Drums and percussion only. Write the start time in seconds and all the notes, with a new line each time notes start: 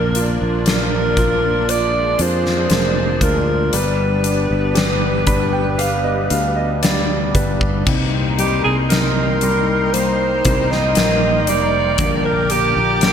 0.15 closed hi-hat
0.66 snare, closed hi-hat
1.17 kick, closed hi-hat
1.69 closed hi-hat
2.19 closed hi-hat
2.46 snare
2.70 snare, closed hi-hat
3.21 kick, closed hi-hat
3.73 closed hi-hat
4.24 closed hi-hat
4.75 snare, closed hi-hat
5.27 kick, closed hi-hat
5.79 closed hi-hat
6.30 closed hi-hat
6.83 snare, closed hi-hat
7.35 kick, closed hi-hat
7.61 kick
7.87 kick, crash
8.39 closed hi-hat
8.90 snare, closed hi-hat
9.41 closed hi-hat
9.94 closed hi-hat
10.45 kick, closed hi-hat
10.72 snare
10.95 snare, closed hi-hat
11.47 closed hi-hat
11.98 kick, closed hi-hat
12.50 closed hi-hat
13.01 snare, closed hi-hat